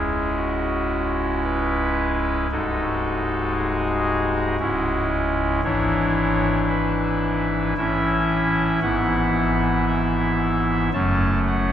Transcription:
0, 0, Header, 1, 2, 480
1, 0, Start_track
1, 0, Tempo, 1079137
1, 1115, Tempo, 1045296
1, 1116, Time_signature, 3, 2, 24, 8
1, 3035, Tempo, 1061947
1, 5311, End_track
2, 0, Start_track
2, 0, Title_t, "Pipe organ"
2, 0, Program_c, 0, 19
2, 0, Note_on_c, 0, 25, 66
2, 0, Note_on_c, 0, 37, 65
2, 0, Note_on_c, 0, 56, 53
2, 0, Note_on_c, 0, 61, 51
2, 0, Note_on_c, 0, 64, 57
2, 0, Note_on_c, 0, 68, 91
2, 138, Note_off_c, 0, 68, 0
2, 152, Note_on_c, 0, 66, 96
2, 625, Note_off_c, 0, 66, 0
2, 640, Note_on_c, 0, 71, 114
2, 1098, Note_off_c, 0, 25, 0
2, 1098, Note_off_c, 0, 37, 0
2, 1098, Note_off_c, 0, 56, 0
2, 1098, Note_off_c, 0, 61, 0
2, 1098, Note_off_c, 0, 64, 0
2, 1101, Note_off_c, 0, 71, 0
2, 1116, Note_on_c, 0, 24, 68
2, 1116, Note_on_c, 0, 56, 55
2, 1117, Note_on_c, 0, 36, 68
2, 1117, Note_on_c, 0, 66, 61
2, 1118, Note_on_c, 0, 63, 58
2, 1118, Note_on_c, 0, 69, 98
2, 1585, Note_off_c, 0, 69, 0
2, 1598, Note_on_c, 0, 68, 116
2, 2057, Note_off_c, 0, 24, 0
2, 2057, Note_off_c, 0, 36, 0
2, 2057, Note_off_c, 0, 56, 0
2, 2057, Note_off_c, 0, 66, 0
2, 2058, Note_off_c, 0, 63, 0
2, 2060, Note_off_c, 0, 68, 0
2, 2072, Note_on_c, 0, 56, 72
2, 2073, Note_on_c, 0, 61, 70
2, 2073, Note_on_c, 0, 66, 109
2, 2074, Note_on_c, 0, 25, 82
2, 2074, Note_on_c, 0, 64, 65
2, 2075, Note_on_c, 0, 37, 86
2, 2277, Note_off_c, 0, 66, 0
2, 2538, Note_off_c, 0, 56, 0
2, 2539, Note_off_c, 0, 25, 0
2, 2539, Note_off_c, 0, 37, 0
2, 2539, Note_off_c, 0, 61, 0
2, 2539, Note_off_c, 0, 64, 0
2, 2553, Note_on_c, 0, 32, 78
2, 2554, Note_on_c, 0, 44, 71
2, 2554, Note_on_c, 0, 52, 65
2, 2554, Note_on_c, 0, 62, 68
2, 2554, Note_on_c, 0, 73, 127
2, 2555, Note_on_c, 0, 64, 62
2, 3022, Note_off_c, 0, 73, 0
2, 3037, Note_on_c, 0, 71, 91
2, 3507, Note_off_c, 0, 32, 0
2, 3508, Note_off_c, 0, 44, 0
2, 3508, Note_off_c, 0, 52, 0
2, 3508, Note_off_c, 0, 62, 0
2, 3508, Note_off_c, 0, 64, 0
2, 3511, Note_off_c, 0, 71, 0
2, 3524, Note_on_c, 0, 76, 127
2, 3525, Note_on_c, 0, 33, 83
2, 3525, Note_on_c, 0, 45, 83
2, 3525, Note_on_c, 0, 52, 75
2, 3525, Note_on_c, 0, 64, 72
2, 3526, Note_on_c, 0, 61, 71
2, 3986, Note_off_c, 0, 76, 0
2, 3987, Note_off_c, 0, 33, 0
2, 3987, Note_off_c, 0, 45, 0
2, 3987, Note_off_c, 0, 52, 0
2, 3987, Note_off_c, 0, 61, 0
2, 3987, Note_off_c, 0, 64, 0
2, 3999, Note_on_c, 0, 78, 127
2, 4000, Note_on_c, 0, 44, 81
2, 4000, Note_on_c, 0, 59, 70
2, 4001, Note_on_c, 0, 52, 61
2, 4002, Note_on_c, 0, 32, 75
2, 4002, Note_on_c, 0, 64, 64
2, 4459, Note_off_c, 0, 78, 0
2, 4474, Note_on_c, 0, 76, 106
2, 4937, Note_off_c, 0, 44, 0
2, 4937, Note_off_c, 0, 59, 0
2, 4938, Note_off_c, 0, 32, 0
2, 4938, Note_off_c, 0, 52, 0
2, 4938, Note_off_c, 0, 64, 0
2, 4941, Note_off_c, 0, 76, 0
2, 4954, Note_on_c, 0, 42, 78
2, 4954, Note_on_c, 0, 54, 65
2, 4955, Note_on_c, 0, 30, 82
2, 4955, Note_on_c, 0, 57, 61
2, 4955, Note_on_c, 0, 61, 63
2, 4955, Note_on_c, 0, 81, 127
2, 5161, Note_off_c, 0, 81, 0
2, 5195, Note_on_c, 0, 78, 112
2, 5311, Note_off_c, 0, 30, 0
2, 5311, Note_off_c, 0, 42, 0
2, 5311, Note_off_c, 0, 54, 0
2, 5311, Note_off_c, 0, 57, 0
2, 5311, Note_off_c, 0, 61, 0
2, 5311, Note_off_c, 0, 78, 0
2, 5311, End_track
0, 0, End_of_file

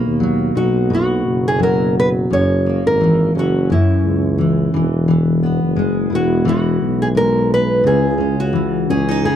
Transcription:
0, 0, Header, 1, 4, 480
1, 0, Start_track
1, 0, Key_signature, 5, "major"
1, 0, Tempo, 693642
1, 1590, Time_signature, 4, 2, 24, 8
1, 6475, End_track
2, 0, Start_track
2, 0, Title_t, "Nylon-string guitar"
2, 0, Program_c, 0, 24
2, 394, Note_on_c, 0, 66, 75
2, 639, Note_off_c, 0, 66, 0
2, 654, Note_on_c, 0, 66, 82
2, 1023, Note_on_c, 0, 68, 85
2, 1025, Note_off_c, 0, 66, 0
2, 1123, Note_off_c, 0, 68, 0
2, 1130, Note_on_c, 0, 70, 87
2, 1344, Note_off_c, 0, 70, 0
2, 1381, Note_on_c, 0, 71, 89
2, 1442, Note_off_c, 0, 71, 0
2, 1614, Note_on_c, 0, 73, 90
2, 1983, Note_off_c, 0, 73, 0
2, 1985, Note_on_c, 0, 70, 93
2, 2298, Note_off_c, 0, 70, 0
2, 2346, Note_on_c, 0, 66, 86
2, 2571, Note_off_c, 0, 66, 0
2, 2574, Note_on_c, 0, 64, 75
2, 3255, Note_off_c, 0, 64, 0
2, 4256, Note_on_c, 0, 66, 86
2, 4483, Note_off_c, 0, 66, 0
2, 4491, Note_on_c, 0, 66, 85
2, 4858, Note_on_c, 0, 68, 88
2, 4863, Note_off_c, 0, 66, 0
2, 4892, Note_off_c, 0, 68, 0
2, 4964, Note_on_c, 0, 70, 93
2, 5204, Note_off_c, 0, 70, 0
2, 5216, Note_on_c, 0, 71, 98
2, 5427, Note_off_c, 0, 71, 0
2, 5445, Note_on_c, 0, 68, 91
2, 5813, Note_on_c, 0, 66, 86
2, 5820, Note_off_c, 0, 68, 0
2, 6161, Note_on_c, 0, 68, 87
2, 6165, Note_off_c, 0, 66, 0
2, 6379, Note_off_c, 0, 68, 0
2, 6404, Note_on_c, 0, 68, 76
2, 6475, Note_off_c, 0, 68, 0
2, 6475, End_track
3, 0, Start_track
3, 0, Title_t, "Steel-string acoustic guitar"
3, 0, Program_c, 1, 25
3, 0, Note_on_c, 1, 47, 72
3, 0, Note_on_c, 1, 58, 51
3, 139, Note_on_c, 1, 54, 64
3, 382, Note_on_c, 1, 63, 55
3, 615, Note_off_c, 1, 47, 0
3, 623, Note_on_c, 1, 47, 77
3, 1100, Note_off_c, 1, 54, 0
3, 1103, Note_on_c, 1, 54, 62
3, 1587, Note_off_c, 1, 47, 0
3, 1594, Note_on_c, 1, 42, 74
3, 1639, Note_off_c, 1, 63, 0
3, 1839, Note_off_c, 1, 58, 0
3, 1842, Note_on_c, 1, 58, 51
3, 2076, Note_off_c, 1, 54, 0
3, 2079, Note_on_c, 1, 52, 64
3, 2318, Note_on_c, 1, 61, 57
3, 2553, Note_off_c, 1, 42, 0
3, 2559, Note_on_c, 1, 42, 75
3, 3030, Note_off_c, 1, 52, 0
3, 3033, Note_on_c, 1, 52, 68
3, 3279, Note_off_c, 1, 52, 0
3, 3279, Note_on_c, 1, 52, 74
3, 3327, Note_off_c, 1, 61, 0
3, 3328, Note_off_c, 1, 42, 0
3, 3329, Note_off_c, 1, 58, 0
3, 3512, Note_off_c, 1, 52, 0
3, 3515, Note_on_c, 1, 52, 74
3, 3759, Note_on_c, 1, 59, 53
3, 3988, Note_on_c, 1, 56, 68
3, 4221, Note_on_c, 1, 64, 56
3, 4461, Note_off_c, 1, 52, 0
3, 4463, Note_on_c, 1, 52, 76
3, 4944, Note_off_c, 1, 56, 0
3, 4946, Note_on_c, 1, 56, 64
3, 5420, Note_off_c, 1, 52, 0
3, 5423, Note_on_c, 1, 49, 73
3, 5487, Note_off_c, 1, 59, 0
3, 5659, Note_on_c, 1, 61, 57
3, 5899, Note_off_c, 1, 56, 0
3, 5902, Note_on_c, 1, 52, 65
3, 6147, Note_off_c, 1, 61, 0
3, 6153, Note_off_c, 1, 64, 0
3, 6156, Note_on_c, 1, 61, 55
3, 6287, Note_off_c, 1, 61, 0
3, 6287, Note_on_c, 1, 63, 49
3, 6386, Note_off_c, 1, 49, 0
3, 6394, Note_on_c, 1, 49, 81
3, 6475, Note_off_c, 1, 49, 0
3, 6475, Note_off_c, 1, 52, 0
3, 6475, Note_off_c, 1, 63, 0
3, 6475, End_track
4, 0, Start_track
4, 0, Title_t, "Tuba"
4, 0, Program_c, 2, 58
4, 44, Note_on_c, 2, 39, 72
4, 363, Note_off_c, 2, 39, 0
4, 389, Note_on_c, 2, 35, 85
4, 842, Note_off_c, 2, 35, 0
4, 870, Note_on_c, 2, 30, 84
4, 1562, Note_off_c, 2, 30, 0
4, 1591, Note_on_c, 2, 30, 85
4, 1935, Note_off_c, 2, 30, 0
4, 1970, Note_on_c, 2, 32, 77
4, 2287, Note_off_c, 2, 32, 0
4, 2315, Note_on_c, 2, 30, 90
4, 2589, Note_off_c, 2, 30, 0
4, 2796, Note_on_c, 2, 37, 78
4, 3246, Note_off_c, 2, 37, 0
4, 3278, Note_on_c, 2, 28, 88
4, 3859, Note_off_c, 2, 28, 0
4, 3889, Note_on_c, 2, 30, 74
4, 4206, Note_off_c, 2, 30, 0
4, 4236, Note_on_c, 2, 28, 90
4, 4686, Note_off_c, 2, 28, 0
4, 4718, Note_on_c, 2, 35, 82
4, 5406, Note_off_c, 2, 35, 0
4, 5438, Note_on_c, 2, 37, 90
4, 5778, Note_off_c, 2, 37, 0
4, 5808, Note_on_c, 2, 37, 73
4, 6125, Note_off_c, 2, 37, 0
4, 6155, Note_on_c, 2, 37, 100
4, 6428, Note_off_c, 2, 37, 0
4, 6475, End_track
0, 0, End_of_file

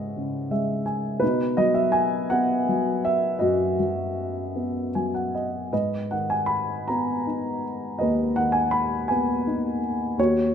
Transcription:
0, 0, Header, 1, 2, 480
1, 0, Start_track
1, 0, Tempo, 707547
1, 826, Time_signature, 6, 3, 24, 8
1, 826, Tempo, 730816
1, 2266, Tempo, 773196
1, 4666, Tempo, 723764
1, 6835, End_track
2, 0, Start_track
2, 0, Title_t, "Grand piano"
2, 0, Program_c, 0, 0
2, 0, Control_c, 0, 64, 127
2, 0, Note_on_c, 0, 44, 48
2, 0, Note_on_c, 0, 56, 34
2, 0, Note_on_c, 0, 64, 39
2, 0, Note_on_c, 0, 73, 57
2, 0, Note_on_c, 0, 75, 71
2, 0, Note_on_c, 0, 76, 53
2, 113, Note_on_c, 0, 49, 37
2, 335, Note_off_c, 0, 56, 0
2, 345, Note_on_c, 0, 56, 44
2, 347, Note_off_c, 0, 76, 0
2, 347, Note_on_c, 0, 76, 51
2, 554, Note_off_c, 0, 73, 0
2, 561, Note_off_c, 0, 64, 0
2, 569, Note_off_c, 0, 76, 0
2, 582, Note_on_c, 0, 80, 49
2, 798, Note_off_c, 0, 44, 0
2, 808, Note_off_c, 0, 80, 0
2, 809, Note_off_c, 0, 49, 0
2, 812, Note_off_c, 0, 56, 0
2, 812, Note_on_c, 0, 71, 69
2, 823, Note_on_c, 0, 47, 53
2, 834, Note_on_c, 0, 63, 48
2, 835, Control_c, 0, 64, 0
2, 842, Note_off_c, 0, 75, 0
2, 933, Control_c, 0, 64, 127
2, 1058, Note_on_c, 0, 75, 78
2, 1061, Note_on_c, 0, 54, 44
2, 1063, Note_off_c, 0, 71, 0
2, 1171, Note_off_c, 0, 75, 0
2, 1171, Note_on_c, 0, 76, 69
2, 1287, Note_off_c, 0, 76, 0
2, 1287, Note_on_c, 0, 80, 74
2, 1517, Note_off_c, 0, 80, 0
2, 1518, Note_off_c, 0, 63, 0
2, 1536, Note_on_c, 0, 78, 73
2, 1546, Note_on_c, 0, 59, 42
2, 1781, Note_off_c, 0, 54, 0
2, 1791, Note_on_c, 0, 54, 42
2, 2027, Note_on_c, 0, 76, 72
2, 2036, Note_off_c, 0, 78, 0
2, 2238, Note_off_c, 0, 47, 0
2, 2253, Note_on_c, 0, 75, 61
2, 2265, Note_on_c, 0, 66, 49
2, 2270, Note_on_c, 0, 42, 46
2, 2274, Note_off_c, 0, 76, 0
2, 2474, Note_off_c, 0, 59, 0
2, 2495, Note_off_c, 0, 54, 0
2, 2504, Note_on_c, 0, 54, 37
2, 2979, Note_on_c, 0, 59, 36
2, 3185, Note_off_c, 0, 75, 0
2, 3191, Note_off_c, 0, 66, 0
2, 3214, Note_off_c, 0, 54, 0
2, 3223, Note_on_c, 0, 54, 33
2, 3223, Note_on_c, 0, 80, 41
2, 3333, Note_off_c, 0, 80, 0
2, 3343, Note_on_c, 0, 78, 43
2, 3453, Note_off_c, 0, 78, 0
2, 3468, Note_on_c, 0, 75, 40
2, 3679, Note_off_c, 0, 42, 0
2, 3683, Note_off_c, 0, 59, 0
2, 3690, Note_off_c, 0, 75, 0
2, 3691, Note_off_c, 0, 54, 0
2, 3704, Note_on_c, 0, 44, 38
2, 3705, Note_on_c, 0, 75, 59
2, 3707, Note_on_c, 0, 71, 35
2, 3709, Control_c, 0, 64, 0
2, 3821, Control_c, 0, 64, 127
2, 3941, Note_on_c, 0, 78, 55
2, 3948, Note_on_c, 0, 51, 33
2, 3953, Note_off_c, 0, 75, 0
2, 4059, Note_on_c, 0, 80, 62
2, 4068, Note_off_c, 0, 78, 0
2, 4161, Note_on_c, 0, 83, 71
2, 4187, Note_off_c, 0, 80, 0
2, 4406, Note_off_c, 0, 71, 0
2, 4418, Note_on_c, 0, 82, 61
2, 4423, Note_off_c, 0, 83, 0
2, 4429, Note_on_c, 0, 59, 38
2, 4645, Note_off_c, 0, 82, 0
2, 4663, Note_on_c, 0, 63, 37
2, 4892, Note_off_c, 0, 51, 0
2, 5134, Note_off_c, 0, 44, 0
2, 5136, Note_on_c, 0, 75, 60
2, 5153, Note_on_c, 0, 71, 45
2, 5155, Note_on_c, 0, 39, 49
2, 5374, Note_off_c, 0, 59, 0
2, 5385, Note_on_c, 0, 78, 70
2, 5393, Note_on_c, 0, 51, 38
2, 5396, Note_off_c, 0, 75, 0
2, 5493, Note_on_c, 0, 80, 69
2, 5516, Note_off_c, 0, 78, 0
2, 5611, Note_off_c, 0, 63, 0
2, 5618, Note_on_c, 0, 83, 76
2, 5630, Note_off_c, 0, 80, 0
2, 5850, Note_off_c, 0, 71, 0
2, 5863, Note_on_c, 0, 80, 65
2, 5877, Note_off_c, 0, 83, 0
2, 5880, Note_on_c, 0, 59, 43
2, 6093, Note_off_c, 0, 80, 0
2, 6123, Note_on_c, 0, 63, 42
2, 6327, Note_off_c, 0, 51, 0
2, 6565, Note_off_c, 0, 39, 0
2, 6572, Note_off_c, 0, 59, 0
2, 6581, Note_off_c, 0, 63, 0
2, 6591, Note_on_c, 0, 39, 58
2, 6602, Control_c, 0, 64, 0
2, 6602, Note_on_c, 0, 73, 80
2, 6604, Note_on_c, 0, 66, 57
2, 6701, Control_c, 0, 64, 127
2, 6835, Note_off_c, 0, 39, 0
2, 6835, Note_off_c, 0, 66, 0
2, 6835, Note_off_c, 0, 73, 0
2, 6835, End_track
0, 0, End_of_file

